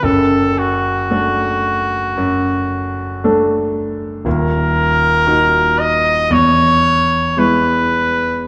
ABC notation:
X:1
M:4/4
L:1/8
Q:1/4=57
K:Dmix
V:1 name="Trumpet"
A F6 z | [K:Elyd] A3 d c2 B2 |]
V:2 name="Grand piano"
[F,,,F,,]2 [A,DA]2 F,,2 [A,DA]2 | [K:Elyd] [D,,,D,,]2 [A,DF]2 E,,2 [G,B,E]2 |]